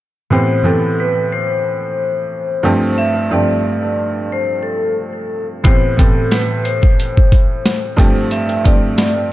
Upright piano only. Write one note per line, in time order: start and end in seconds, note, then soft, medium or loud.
0.30 0.55 A2 medium
0.30 0.55 E3 medium
0.30 0.55 B3 medium
0.30 0.56 C4 medium
0.30 0.56 G4 medium
0.63 1.56 A2 medium
0.63 1.56 E3 medium
0.63 1.56 B3 medium
0.63 1.57 C4 medium
0.63 1.57 G4 medium
2.63 3.19 G2 medium
2.63 3.19 F3 medium
2.63 3.19 A3 medium
2.63 3.20 C4 medium
2.63 3.20 G4 loud
3.31 4.23 G2 medium
3.31 4.23 F3 medium
3.31 4.23 A3 medium
3.31 4.24 C4 medium
3.31 4.24 G4 medium
5.64 5.88 A2 medium
5.64 5.88 E3 medium
5.64 5.89 B3 medium
5.64 5.89 C4 medium
5.64 5.89 G4 medium
5.97 6.89 A2 medium
5.97 6.89 E3 medium
5.97 6.90 B3 medium
5.97 6.90 C4 medium
5.97 6.90 G4 medium
7.96 8.52 G2 medium
7.96 8.52 F3 medium
7.96 8.53 A3 medium
7.96 8.53 C4 medium
7.96 8.53 G4 loud
8.64 9.33 G2 medium
8.64 9.33 F3 medium
8.64 9.33 A3 medium
8.64 9.33 C4 medium
8.64 9.33 G4 medium